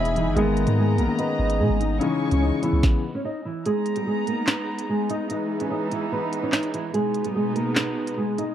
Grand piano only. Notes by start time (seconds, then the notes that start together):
Already playing: E3 G#3 B3 D#4 E4
0.15 E3 G#3 B3 D#4
0.35 D#3 G#3 A#3 B3
0.97 D#3 G#3 A#3 B3
1.07 D#3 G#3 B3 C#4
2.00 C#3 E3 G#3 C#4
2.61 C#3 E3 G#3 B3